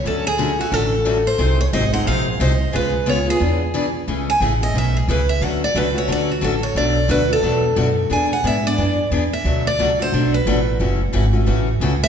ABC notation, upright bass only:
X:1
M:4/4
L:1/8
Q:"Swing" 1/4=178
K:Emix
V:1 name="Upright bass" clef=bass
D,,4 A,,,4 | ^B,,,2 G,,,2 ^A,,,2 B,,,2 | C,,4 E,,4 | [K:A] C,,2 A,,,2 B,,,2 C,,2 |
D,,2 C,,2 D,,2 A,,,2 | B,,,2 D,,2 E,,2 F,,2 | E,,2 G,,2 F,,2 E,,2 | D,,2 C,,2 B,,,2 A,,,2 |
F,,,2 G,,,2 A,,,2 C,,2 |]